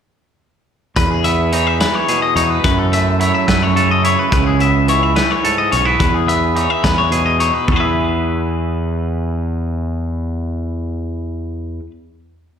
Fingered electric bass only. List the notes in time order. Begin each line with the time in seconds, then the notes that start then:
0.97 E2
2.36 E2
2.64 F#2
3.48 F#2
4.32 C#2
5.73 B1
6.00 E2
6.84 E2
7.68 E2